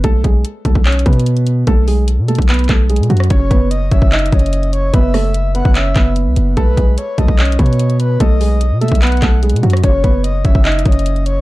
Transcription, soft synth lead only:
\new Staff \with { instrumentName = "Soft synth lead" } { \time 4/4 \key b \mixolydian \tempo 4 = 147 r1 | r1 | cis''4 dis''8 e''4 dis''4 cis''8 | e''4. fis''8 e''4 r4 |
b'4 cis''8 dis''4 cis''4 b'8 | dis''4. e''8 fis''4 r4 | cis''4 dis''8 e''4 dis''4 cis''8 | }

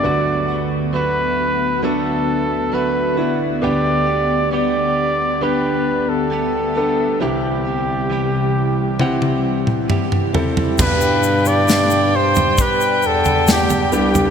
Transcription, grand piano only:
<<
  \new Staff \with { instrumentName = "Grand piano" } { \time 4/4 \key g \major \tempo 4 = 67 <b d' fis'>2 <b d' a'>4. <b d' e'>8 | <b d' g'>2 <b d' g'>4. <b d' a'>8 | <c' e' g'>2 <c' e' fis''>4. <c' e' a'>8 | <b, g d' g'>2 r4. <g b d' g'>8 | }
  \new Staff \with { instrumentName = "Grand piano" } { \clef bass \time 4/4 \key g \major <d, d>1 | <d, d>1 | <c, c>1 | g,4. r2 r8 | }
>>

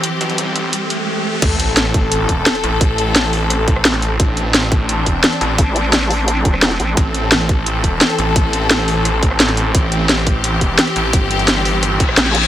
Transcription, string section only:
\new Staff \with { instrumentName = "String section" } { \time 4/4 \key a \minor \tempo 4 = 173 << { g'1 | a'1~ | a'1 | d'1~ |
d'1 | a'1~ | a'1 | g'1~ |
g'1 | } \\ { <e c'>1 | <e c'>1~ | <e c'>1~ | <e c'>1~ |
<e c'>1~ | <e c'>1~ | <e c'>1~ | <e c'>1~ |
<e c'>1 | } >> }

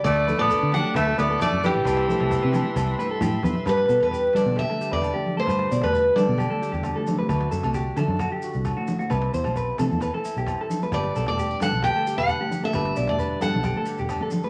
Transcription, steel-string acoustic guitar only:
\new Staff \with { instrumentName = "Steel-string acoustic guitar" } { \time 4/4 \key g \major \tempo 4 = 132 d''8. d''8. fis''8 e''8 d''8 d''8 g'8~ | g'2. r4 | b'8. b'8. d''8 e''8. d''4 c''16~ | c''8. b'8. d''2 r8 |
r1 | r1 | d''8. d''8. fis''8 g''8. fis''4 e''16~ | e''8. d''8. fis''2 r8 | }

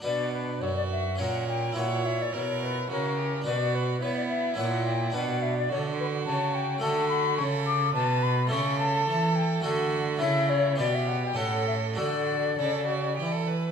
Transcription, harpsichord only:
<<
  \new Staff \with { instrumentName = "Harpsichord" } { \time 3/4 \key b \minor \tempo 4 = 106 <d' fis' b'>2 <cis' fis' cis''>4 | <e' fis' cis''>2. | <d' fis' b'>2 <cis' e' cis''>4 | <d' fis' b'>2. |
\key d \major <a fis' a'>2. | <a g' a'>2 <a fis' a'>4 | <a e' a'>4 <b g' d''>4 <cis' g' a'>4 | <d' fis' a'>2. | }
  \new Staff \with { instrumentName = "Harpsichord" } { \clef bass \time 3/4 \key b \minor b,4 fis,4 ais,4 | ais,4 b,4 cis4 | b,4 b4 ais,4 | b,4 d4 cis4 |
\key d \major d4 cis4 b,4 | cis4 e4 d4 | cis4 b,4 a,4 | d4 cis4 e4 | }
>>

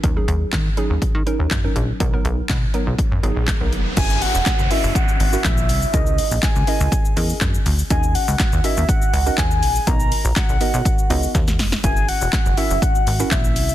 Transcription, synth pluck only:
\new Staff \with { instrumentName = "Synth pluck" } { \time 4/4 \key fis \mixolydian \tempo 4 = 122 <fis cis' dis' ais'>16 <fis cis' dis' gis'>4 r16 <fis cis' dis' gis'>8. r16 <fis cis' dis' ais'>8 r16 <fis cis' dis' ais'>8 r16 | <fis b dis' ais'>16 <fis b dis' ais'>4 r16 <fis b dis' ais'>8. r16 <fis b dis' gis'>8 r16 <fis b dis' ais'>8 r16 | <cis' e' fis' ais' e''>4~ <cis' e' fis' ais' e''>16 r16 <cis' e' fis' ais' dis''>4 r16 <cis' e' fis' ais' e''>4 r16 | <cis' e' gis' ais' dis''>4~ <cis' e' gis' ais' dis''>16 r16 <cis' e' gis' ais' dis''>8. r16 <cis' e' gis' ais' dis''>4~ <cis' e' gis' ais' dis''>16 r16 |
<cis' dis' fis' ais' dis''>4~ <cis' dis' fis' ais' dis''>16 r16 <cis' dis' fis' ais' dis''>4 r16 <cis' dis' fis' ais' dis''>4 r16 | <b dis' fis' ais' dis''>4~ <b dis' fis' ais' dis''>16 r16 <b dis' fis' ais' dis''>8. r16 <b dis' fis' ais' dis''>4~ <b dis' fis' ais' dis''>16 r16 | <cis' e' fis' ais' e''>4~ <cis' e' fis' ais' e''>16 r16 <cis' e' fis' ais' fis''>4 r16 <cis' e' fis' ais' e''>4 r16 | }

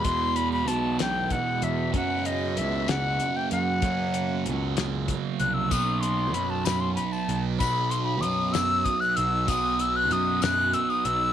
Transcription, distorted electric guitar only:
\new Staff \with { instrumentName = "Distorted electric guitar" } { \clef bass \time 6/8 \key b \major \tempo 4. = 64 <e, b, e>2. | <fis, cis fis>2. | <fis, cis fis>2. | <b, fis b>2. |
<b, fis b>2. | <b, fis b>2. | }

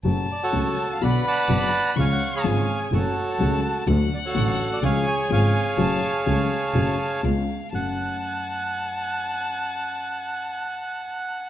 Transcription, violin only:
\new Staff \with { instrumentName = "Violin" } { \time 4/4 \key fis \minor \tempo 4 = 125 a''2 b''2 | cis'''4 gis''4 a''2 | fis''2 gis''2 | a''4 a''2 eis''4 |
a''1~ | a''1 | }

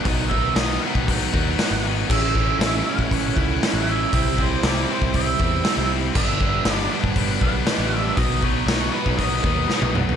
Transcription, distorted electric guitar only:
\new Staff \with { instrumentName = "Distorted electric guitar" } { \time 4/4 \key b \minor \tempo 4 = 118 <b, dis fis b dis'>8 <fis b dis'>8 <dis fis b dis'>8 <b, dis fis b dis'>8 <dis fis b dis'>8 <fis b dis'>8 <dis fis b dis'>8 <b, dis fis b dis'>8 | <a, e a cis' e'>8 <a cis' e'>8 <e a cis' e'>8 <a, e a cis' e'>8 <e a cis' e'>8 <a cis' e'>8 <e a cis' e'>8 <a, e a cis' e'>8 | <c g c' e'>8 <g c' e'>8 <c g c' e'>8 <c g c' e'>8 <c g c' e'>8 <g c' e'>8 <c g c' e'>8 <c g c' e'>8 | <g, d g b d'>8 <g b d'>8 <d g b d'>8 <g, d g b d'>8 <d g b d'>8 <g b d'>8 <d g b d'>8 <g, d g b d'>8 |
<b, fis b dis'>8 <fis b dis'>8 <b, fis b dis'>8 <b, fis b dis'>8 <b, fis b dis'>8 <fis b dis'>8 <b, fis b dis'>8 <b, fis b dis'>8 | }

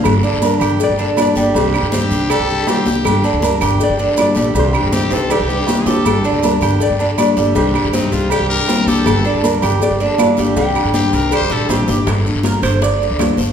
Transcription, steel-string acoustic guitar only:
\new Staff \with { instrumentName = "Steel-string acoustic guitar" } { \time 4/4 \key g \minor \tempo 4 = 160 <d g bes d' a'>8 <bes d' a'>8 <d g bes d'>4 r8 <bes d' a'>8 <d g bes d' a'>8 <bes d' a'>8 | <c ees g d' g'>8 <g d' g'>8 <c ees g d' g'>4 r8 <g d' g'>8 <c ees g d' g'>8 <g d' g'>8 | <d g bes d' a'>8 <bes d' a'>8 <d g bes d'>4 r8 <bes d' a'>8 <d g bes d' a'>8 <bes d' a'>8 | <c ees g d' g'>8 <g d' g'>8 <c ees g d' g'>4 r8 <g d' g'>8 <c ees g d' g'>8 <g d' g'>8 |
<d g bes d' a'>8 <bes d' a'>8 <d g bes d'>4 r8 <bes d' a'>8 <d g bes d' a'>8 <bes d' a'>8 | <c ees g d' g'>8 <g d' g'>8 <c ees g d' g'>4 r8 <g d' g'>8 <c ees g d' g'>8 <g d' g'>8 | <d g bes d' a'>8 <bes d' a'>8 <d g bes d'>4 r8 <bes d' a'>8 <d g bes d' a'>8 <bes d' a'>8 | <c ees g d' g'>8 <g d' g'>8 <c ees g d' g'>4 r8 <g d' g'>8 <c ees g d' g'>8 <g d' g'>8 |
<d g bes d' a'>8 <bes d' a'>8 <d g bes d' a'>4 r8 <bes d' a'>8 <d g bes d' a'>8 <bes d' a'>8 | }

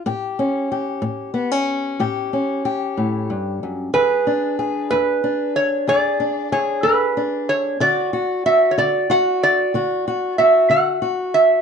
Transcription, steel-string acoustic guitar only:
\new Staff \with { instrumentName = "Steel-string acoustic guitar" } { \time 12/8 \key a \mixolydian \tempo 4. = 62 << { g'8 cis'8 g'4 b16 cis'8. g'8 cis'8 g'2 | gis'8 d'8 gis'4 d'4 gis'8 d'8 gis'4 d'4 | fis'8 fis'8 fis'4 fis'4 fis'8 fis'8 fis'4 fis'4 | } \\ { a,4 r8 a,4 r8 a,4 r8 a,8 g,8 fis,8 | e,4 r8 e,4 r8 e,4 r8 e,4 r8 | d4 r8 d4 r8 d4 r8 d4 r8 | } >> }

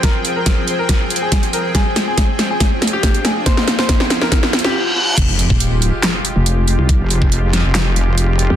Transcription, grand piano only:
\new Staff \with { instrumentName = "Grand piano" } { \time 4/4 \key f \minor \tempo 4 = 140 bes'8 r16 bes'8. r16 bes'8. r16 aes'8 r16 bes'8 | aes'8 r16 aes'8. r16 aes'8. r16 g'8 r16 aes'8 | c''8 r16 c''8. r16 bes'8. r16 g'16 r4 | r1 |
r1 | }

